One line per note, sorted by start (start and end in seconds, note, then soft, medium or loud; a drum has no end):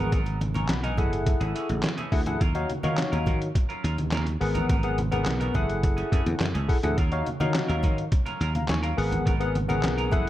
0.00 0.10 F#3 medium
0.00 0.11 B3 medium
0.00 0.18 B3 medium
0.00 0.11 D#4 medium
0.00 0.18 G#4 medium
0.00 0.11 A#4 medium
0.00 0.18 A#4 medium
0.00 0.12 F#5 loud
0.12 0.36 G#1 loud
0.12 0.38 F#3 medium
0.12 0.39 B3 medium
0.12 0.39 D#4 medium
0.12 0.39 A#4 medium
0.12 kick loud
0.12 closed hi-hat medium
0.12 muted conga soft
0.26 closed hi-hat soft
0.26 muted conga soft
0.41 0.64 G#1 loud
0.41 muted clean electric guitar stroke soft
0.41 closed hi-hat medium
0.41 high conga medium
0.54 0.68 F#3 medium
0.54 0.68 B3 medium
0.54 0.69 D#4 medium
0.54 0.68 A#4 medium
0.54 0.69 G#5 soft
0.54 0.69 C#6 medium
0.54 closed hi-hat medium
0.54 high conga medium
0.68 0.98 B1 medium
0.68 0.83 F#5 medium
0.68 0.83 B5 medium
0.68 muted clean electric guitar stroke soft
0.68 snare loud
0.68 clap medium
0.68 closed hi-hat medium
0.68 muted conga soft
0.83 0.97 F#3 medium
0.83 0.98 B3 medium
0.83 0.98 D#4 medium
0.83 0.99 A#4 medium
0.83 1.11 D#5 medium
0.83 1.11 G#5 medium
0.83 closed hi-hat medium
0.83 muted conga soft
0.97 1.33 F#1 loud
0.97 1.11 E3 medium
0.97 1.12 A3 medium
0.97 1.12 C#4 medium
0.97 1.89 E4 medium
0.97 1.89 G#4 medium
0.97 1.11 G#4 medium
0.97 1.89 A4 medium
0.97 1.90 F#5 medium
0.97 kick medium
0.97 closed hi-hat medium
0.97 low conga medium
1.12 muted clean electric guitar stroke soft
1.12 closed hi-hat medium
1.26 muted clean electric guitar stroke soft
1.26 kick loud
1.26 closed hi-hat medium
1.26 muted conga soft
1.40 1.52 G#1 medium
1.40 1.54 E3 medium
1.40 1.54 A3 medium
1.40 1.54 C#4 medium
1.40 1.54 G#4 medium
1.40 closed hi-hat soft
1.40 muted conga soft
1.55 1.72 E3 medium
1.55 1.69 A3 medium
1.55 1.68 C#4 medium
1.55 1.68 G#4 medium
1.55 closed hi-hat medium
1.69 1.81 A1 medium
1.69 muted clean electric guitar stroke soft
1.69 closed hi-hat soft
1.69 high conga medium
1.83 muted clean electric guitar stroke soft
1.83 snare loud
1.83 clap loud
1.83 closed hi-hat medium
1.83 muted conga soft
1.98 2.11 E3 medium
1.98 2.11 A3 medium
1.98 2.12 C#4 medium
1.98 2.12 G#4 medium
1.98 closed hi-hat soft
1.98 muted conga soft
2.12 2.36 D2 medium
2.12 2.20 E4 medium
2.12 2.20 G#4 medium
2.12 2.20 A4 medium
2.12 2.20 F#5 medium
2.12 kick medium
2.12 open hi-hat medium
2.26 2.41 E4 medium
2.26 2.41 G#4 medium
2.26 2.41 A4 medium
2.26 2.41 F#5 medium
2.26 muted clean electric guitar stroke medium
2.26 closed hi-hat medium
2.26 low conga medium
2.40 2.64 D#2 loud
2.40 2.67 F#3 medium
2.40 2.67 C#4 medium
2.40 2.67 F4 medium
2.40 2.68 A#4 medium
2.40 kick loud
2.40 closed hi-hat loud
2.55 2.71 D#4 medium
2.55 2.71 F#4 medium
2.55 2.71 C#5 medium
2.55 2.71 F5 loud
2.55 closed hi-hat soft
2.55 muted conga soft
2.69 muted clean electric guitar stroke soft
2.69 closed hi-hat medium
2.69 high conga medium
2.83 2.96 D#3 medium
2.83 2.97 F#3 soft
2.83 2.97 C#4 medium
2.83 3.47 D#4 medium
2.83 2.97 F4 medium
2.83 3.47 F#4 medium
2.83 2.97 A#4 medium
2.83 3.47 C#5 medium
2.83 3.47 F5 medium
2.83 closed hi-hat medium
2.83 high conga medium
2.97 muted clean electric guitar stroke medium
2.97 snare loud
2.97 clap medium
2.97 closed hi-hat loud
2.97 muted conga soft
3.12 3.24 D#2 medium
3.12 3.25 F#3 medium
3.12 3.26 C#4 medium
3.12 3.26 F4 medium
3.12 3.26 A#4 medium
3.12 closed hi-hat medium
3.12 muted conga soft
3.26 3.50 D#3 medium
3.26 3.40 F#3 medium
3.26 3.40 C#4 medium
3.26 3.40 F4 medium
3.26 3.40 A#4 medium
3.26 kick medium
3.26 closed hi-hat medium
3.26 low conga medium
3.41 muted clean electric guitar stroke soft
3.41 closed hi-hat medium
3.55 muted clean electric guitar stroke soft
3.55 kick loud
3.55 closed hi-hat loud
3.55 muted conga soft
3.69 3.82 F#3 medium
3.69 3.83 C#4 medium
3.69 3.83 F4 medium
3.69 3.83 A#4 medium
3.69 closed hi-hat soft
3.83 4.07 D#2 medium
3.83 4.01 F#3 medium
3.83 3.98 C#4 medium
3.83 3.97 F4 medium
3.83 3.96 A#4 medium
3.83 closed hi-hat medium
3.98 muted clean electric guitar stroke medium
3.98 closed hi-hat medium
3.98 high conga medium
4.11 4.36 D#2 medium
4.11 4.29 F#3 medium
4.11 4.26 C#4 medium
4.11 4.25 F4 medium
4.11 4.25 A#4 medium
4.11 snare loud
4.11 clap medium
4.11 closed hi-hat medium
4.11 muted conga soft
4.26 muted clean electric guitar stroke medium
4.26 closed hi-hat medium
4.40 4.64 G#1 medium
4.40 4.75 B3 medium
4.40 4.75 G#4 medium
4.40 4.75 A#4 medium
4.40 4.75 F#5 medium
4.40 muted clean electric guitar stroke soft
4.40 open hi-hat medium
4.55 4.68 F#3 soft
4.55 4.68 B3 medium
4.55 4.69 D#4 medium
4.55 4.68 A#4 medium
4.55 closed hi-hat medium
4.55 low conga medium
4.69 4.93 G#1 loud
4.69 4.95 F#3 medium
4.69 4.96 B3 medium
4.69 4.96 D#4 medium
4.69 4.96 A#4 medium
4.69 kick loud
4.69 closed hi-hat medium
4.69 muted conga soft
4.69 low conga medium
4.83 5.00 B3 medium
4.83 5.00 G#4 medium
4.83 5.00 A#4 medium
4.83 5.00 F#5 medium
4.83 closed hi-hat soft
4.83 muted conga soft
4.98 5.22 G#1 loud
4.98 muted clean electric guitar stroke soft
4.98 closed hi-hat medium
4.98 high conga medium
5.11 5.25 F#3 medium
5.11 5.55 B3 medium
5.11 5.25 B3 medium
5.11 5.25 D#4 medium
5.11 5.54 G#4 medium
5.11 5.25 A#4 medium
5.11 5.55 A#4 medium
5.11 5.54 F#5 medium
5.11 closed hi-hat medium
5.11 high conga medium
5.26 5.50 B1 loud
5.26 muted clean electric guitar stroke soft
5.26 snare loud
5.26 clap medium
5.26 closed hi-hat medium
5.26 muted conga soft
5.40 5.54 F#3 medium
5.40 5.55 B3 medium
5.40 5.55 D#4 medium
5.40 5.56 A#4 medium
5.40 closed hi-hat medium
5.40 muted conga soft
5.54 6.02 F#1 loud
5.54 5.68 E3 medium
5.54 5.68 A3 medium
5.54 5.68 C#4 medium
5.54 6.46 E4 medium
5.54 6.46 G#4 medium
5.54 5.67 G#4 medium
5.54 6.47 A4 medium
5.54 6.47 F#5 medium
5.54 kick medium
5.54 closed hi-hat medium
5.54 low conga medium
5.69 muted clean electric guitar stroke soft
5.69 closed hi-hat medium
5.83 muted clean electric guitar stroke soft
5.83 kick loud
5.83 closed hi-hat loud
5.97 6.10 E3 medium
5.97 6.11 A3 medium
5.97 6.11 C#4 medium
5.97 6.11 G#4 medium
5.97 closed hi-hat soft
5.97 muted conga soft
6.12 6.24 F#2 medium
6.12 6.29 E3 medium
6.12 6.26 A3 medium
6.12 6.25 C#4 medium
6.12 6.25 G#4 medium
6.12 kick medium
6.12 closed hi-hat medium
6.26 6.38 E2 medium
6.26 muted clean electric guitar stroke soft
6.26 closed hi-hat medium
6.26 high conga medium
6.40 6.52 F#2 medium
6.40 muted clean electric guitar stroke soft
6.40 snare loud
6.40 clap loud
6.40 closed hi-hat medium
6.54 6.67 C#2 medium
6.54 6.68 E3 medium
6.54 6.68 A3 medium
6.54 6.69 C#4 medium
6.54 6.69 G#4 medium
6.54 closed hi-hat medium
6.54 muted conga soft
6.68 6.77 E4 medium
6.68 6.77 G#4 medium
6.68 6.77 A4 medium
6.68 6.77 F#5 medium
6.68 muted clean electric guitar stroke soft
6.68 kick medium
6.68 open hi-hat medium
6.83 6.95 D2 medium
6.83 6.98 E4 medium
6.83 6.98 G#4 medium
6.83 6.98 A4 medium
6.83 6.98 F#5 medium
6.83 muted clean electric guitar stroke soft
6.83 closed hi-hat medium
6.83 low conga medium
6.97 7.21 D#2 loud
6.97 7.24 F#3 medium
6.97 7.24 C#4 medium
6.97 7.25 F4 medium
6.97 7.25 A#4 medium
6.97 kick loud
6.97 closed hi-hat loud
6.97 muted conga soft
7.12 7.28 D#4 medium
7.12 7.28 F#4 medium
7.12 7.28 C#5 medium
7.12 7.28 F5 medium
7.12 closed hi-hat soft
7.26 muted clean electric guitar stroke soft
7.26 closed hi-hat medium
7.26 high conga medium
7.40 7.52 D#3 medium
7.40 7.53 F#3 soft
7.40 7.54 C#4 medium
7.40 8.04 D#4 medium
7.40 7.54 F4 medium
7.40 8.04 F#4 medium
7.40 7.54 A#4 medium
7.40 8.04 C#5 medium
7.40 8.04 F5 medium
7.40 closed hi-hat medium
7.40 high conga medium
7.54 muted clean electric guitar stroke soft
7.54 snare loud
7.54 clap medium
7.54 closed hi-hat loud
7.54 muted conga soft
7.68 7.81 D#2 medium
7.68 7.82 F#3 medium
7.68 7.82 C#4 medium
7.68 7.83 F4 medium
7.68 7.83 A#4 medium
7.68 closed hi-hat medium
7.68 muted conga soft
7.83 8.07 D#3 medium
7.83 7.97 F#3 medium
7.83 7.97 C#4 medium
7.83 7.97 F4 medium
7.83 7.96 A#4 medium
7.83 kick medium
7.83 closed hi-hat medium
7.83 low conga medium
7.97 muted clean electric guitar stroke soft
7.97 closed hi-hat soft
8.11 muted clean electric guitar stroke soft
8.11 kick loud
8.11 closed hi-hat loud
8.11 muted conga soft
8.26 8.39 F#3 medium
8.26 8.40 C#4 medium
8.26 8.40 F4 medium
8.26 8.40 A#4 medium
8.26 closed hi-hat soft
8.26 muted conga soft
8.40 8.64 D#2 medium
8.40 8.58 F#3 medium
8.40 8.55 C#4 medium
8.40 8.54 F4 medium
8.40 8.53 A#4 loud
8.40 closed hi-hat medium
8.55 8.69 F5 medium
8.55 8.69 A#5 medium
8.55 muted clean electric guitar stroke soft
8.55 closed hi-hat soft
8.55 high conga medium
8.68 8.93 D#2 medium
8.68 8.83 G#5 medium
8.68 8.83 C#6 medium
8.68 muted clean electric guitar stroke soft
8.68 snare loud
8.68 clap medium
8.68 closed hi-hat medium
8.68 muted conga soft
8.83 8.96 F#3 medium
8.83 8.97 C#4 medium
8.83 8.98 F4 medium
8.83 8.97 A#4 medium
8.83 9.11 F5 medium
8.83 9.11 A#5 medium
8.83 closed hi-hat medium
8.97 9.21 G#1 medium
8.97 9.32 B3 medium
8.97 9.32 G#4 medium
8.97 9.32 A#4 medium
8.97 9.32 F#5 loud
8.97 muted clean electric guitar stroke soft
8.97 open hi-hat medium
9.12 muted clean electric guitar stroke soft
9.12 closed hi-hat medium
9.12 low conga medium
9.26 9.50 G#1 loud
9.26 9.52 F#3 medium
9.26 9.53 B3 medium
9.26 9.53 D#4 medium
9.26 9.53 A#4 medium
9.26 kick loud
9.26 closed hi-hat loud
9.26 muted conga soft
9.40 9.56 B3 loud
9.40 9.57 G#4 medium
9.40 9.57 A#4 medium
9.40 9.57 F#5 loud
9.40 closed hi-hat soft
9.40 muted conga soft
9.55 9.79 G#1 loud
9.55 muted clean electric guitar stroke soft
9.55 closed hi-hat medium
9.55 high conga medium
9.68 9.82 F#3 soft
9.68 10.12 B3 medium
9.68 9.83 B3 medium
9.68 9.83 D#4 medium
9.68 10.11 G#4 medium
9.68 9.83 A#4 medium
9.68 10.12 A#4 medium
9.68 10.11 F#5 medium
9.68 closed hi-hat medium
9.68 high conga medium
9.83 10.12 B1 medium
9.83 muted clean electric guitar stroke soft
9.83 snare loud
9.83 clap medium
9.83 closed hi-hat loud
9.83 muted conga soft
9.98 10.11 F#3 medium
9.98 10.12 B3 medium
9.98 10.13 D#4 medium
9.98 10.13 A#4 medium
9.98 closed hi-hat soft
10.11 10.30 F#1 medium
10.11 10.25 E3 medium
10.11 10.26 A3 medium
10.11 10.26 C#4 medium
10.11 10.30 E4 medium
10.11 10.30 G#4 medium
10.11 10.25 G#4 medium
10.11 10.30 A4 medium
10.11 10.30 F#5 loud
10.11 kick medium
10.11 closed hi-hat medium
10.11 low conga medium
10.26 muted clean electric guitar stroke soft